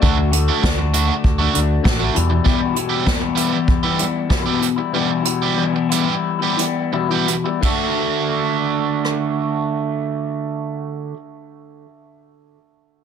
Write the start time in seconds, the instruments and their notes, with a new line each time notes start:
0.01 fingered electric bass D2, clean electric guitar D3 A3 D4 F#4, kick
0.18 muted overdriven electric guitar stroke
0.31 clean electric guitar D3 A3 D4 F#4, closed hi-hat
0.48 overdriven electric guitar D3 A3 D4 F#4
0.62 fingered electric bass D2, clean electric guitar D3 A3 D4 F#4, kick, snare
0.77 clean electric guitar A3 D4 F#4, muted overdriven electric guitar stroke
0.93 clean electric guitar D3 A3 D4 F#4, closed hi-hat
1.07 clean electric guitar A3 D4 F#4
1.24 fingered electric bass D2, kick
1.38 overdriven electric guitar D3, clean electric guitar A3 D4 F#4
1.53 fingered electric bass D2, clean electric guitar D3 A3 D4 F#4, closed hi-hat
1.83 fingered electric bass A1, clean electric guitar D3 A3 D4 F#4, muted overdriven electric guitar stroke, kick, snare
1.98 overdriven electric guitar D3, clean electric guitar A3 D4 F#4
2.14 clean electric guitar E2 B2 E3 G3 B3 E4, fingered electric bass E2, closed hi-hat
2.30 clean electric guitar E3 G3 B3 E4, muted overdriven electric guitar stroke
2.44 clean electric guitar E2 B2 E3 G3 B3 E4, overdriven electric guitar G4, kick
2.60 muted overdriven electric guitar stroke
2.75 clean electric guitar E3 G3 B3 E4, closed hi-hat
2.89 overdriven electric guitar E3 G3 B3 G4
3.05 clean electric guitar E2 B2 E3 G3 B3 E4, kick, snare
3.21 clean electric guitar E3 G3 B3 E4, muted overdriven electric guitar stroke
3.35 clean electric guitar E3 G3 B3 E4, overdriven electric guitar G4, closed hi-hat
3.52 clean electric guitar E3 G3 B3 E4
3.68 kick
3.83 clean electric guitar E3 G3 B3 E4, overdriven electric guitar G4
3.99 clean electric guitar E3 G3 B3 E4, closed hi-hat
4.29 clean electric guitar E2 B2 E3 G3 B3 E4, muted overdriven electric guitar stroke, kick, snare
4.44 clean electric guitar E3 G3 B3 E4, overdriven electric guitar G4
4.61 muted clean electric guitar stroke, closed hi-hat
4.76 clean electric guitar E3 G3 B3 E4, muted overdriven electric guitar stroke
4.93 clean electric guitar E2 B2 E3 G3 B3 E4, overdriven electric guitar G4
5.10 muted overdriven electric guitar stroke
5.24 clean electric guitar E3 G3 B3 E4, closed hi-hat
5.42 overdriven electric guitar E3 G3 B3 G4
5.56 clean electric guitar E2 B2 E3 G3 B3 E4
5.73 clean electric guitar E3 G3 B3 E4, muted overdriven electric guitar stroke
5.89 clean electric guitar E3 G3 B3 E4, closed hi-hat
5.94 overdriven electric guitar G4
6.05 clean electric guitar E3 G3 B3 E4
6.39 clean electric guitar E3 G3 B3 E4, overdriven electric guitar G4
6.57 clean electric guitar E3 G3 B3 E4, closed hi-hat
6.92 clean electric guitar E2 B2 E3 G3 B3 E4, muted overdriven electric guitar stroke
7.09 clean electric guitar E3 G3 B3 E4, overdriven electric guitar G4
7.28 muted clean electric guitar stroke, closed hi-hat
7.44 clean electric guitar E3 G3 B3 E4, muted overdriven electric guitar stroke
7.61 clean electric guitar D3 A3 D4 F#4, kick, ride
9.05 cross-stick